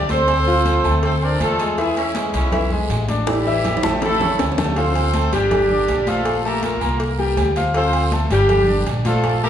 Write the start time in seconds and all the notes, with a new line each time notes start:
Already playing: D2
0.09 C4 A4 C5 C6, cowbell, high conga, short guiro
0.27 cowbell, high conga, low agogo, long guiro
0.46 F3 F4 F5, high conga
0.65 cowbell, high conga, low agogo, short guiro
0.84 D2 A3 A4 A5, high conga, low agogo, short guiro
1.03 C4 A4 C5, cowbell, high conga, long guiro
1.22 C4 D4 A#4 C5 D5 C6, high conga, low agogo
1.40 E2 A3 F4 A4, cowbell, high conga, low agogo, short guiro
1.59 G#3 G#4 G#5, cowbell, short guiro
1.78 E3 G#3 E4 G#4 E5, cowbell, high conga, low agogo, long guiro
1.96 E3 C#4 E4, cowbell, high conga, low agogo
2.15 G#3 G#4 G#5, cowbell, high conga, short guiro
2.34 B1 E3 C#4 E4, cowbell, high conga, low agogo, short guiro
2.52 E3 E4 E5, cowbell, high conga, low conga, low agogo, long guiro
2.70 G#3 G#4 G#5, high conga, low conga
2.89 A1, cowbell, high conga, low timbale, low agogo, short guiro
3.08 D4 D5 D6, cowbell, high conga, short guiro
3.27 G3 E4 G4, cowbell, high bongo, high conga, high timbale, low agogo, long guiro
3.46 E3 E4 E5
3.64 cowbell, low conga, low timbale, low agogo, short guiro
3.77 high timbale
3.83 A1 A3 A4 A5, high bongo, low conga, low agogo, short guiro
3.90 high timbale
4.02 A3 E4 A4, cowbell, low bongo, low timbale, long guiro
4.15 low timbale
4.20 C#4 C#5 C#6, low bongo, low conga, low agogo
4.39 D2, cowbell, low bongo, low timbale, low agogo, short guiro
4.52 low timbale
4.58 A3 A4 A5, cowbell, low bongo, low conga, short guiro
4.64 low timbale
4.76 F3 C4 F4 A4 C5 F5, cowbell, high conga, low agogo, long guiro
4.95 cowbell, high conga, low agogo
5.14 A3 A4 A5, cowbell, high conga, short guiro
5.32 G1 G3 D4 G4 G5, cowbell, high conga, low agogo, short guiro
5.51 cowbell, high conga, low conga, low agogo, long guiro
5.69 D4 D5 D6, high conga, low conga
5.88 A#1, cowbell, high conga, low timbale, low agogo, short guiro
6.07 F3 A3 F4 A4 F5, cowbell, high conga, short guiro
6.25 cowbell, high conga, low agogo, long guiro
6.44 A3 A#3 G4 A4 A#4 A5, high conga
6.63 A#3 F4 A#4, cowbell, high conga, low agogo, short guiro
6.81 C2 A#3 A#4 A#5, high conga, low agogo, short guiro
7.00 cowbell, high conga, long guiro
7.19 G3 G4 G5, high conga, low agogo
7.37 D2, cowbell, high conga, low timbale, low agogo, short guiro
7.56 F3 F4 F5, cowbell, short guiro
7.74 F3 C4 F4 A4 C5 F5, cowbell, high conga, low agogo, long guiro
7.93 cowbell, high conga, low agogo
8.12 A3 A4 A5, cowbell, high conga, short guiro
8.30 G1 G3 D4 G4 G5, cowbell, high conga, low agogo, short guiro
8.49 cowbell, high conga, low conga, low agogo, long guiro
8.68 D4 D5 D6, high conga, low conga
8.86 A#1, cowbell, low timbale, low agogo, short guiro
9.05 F3 A3 F4 A4 F5, cowbell, high conga, short guiro
9.23 cowbell, high conga, low agogo, long guiro
9.42 A3 A#3 G4 A4 A#4 A5, high conga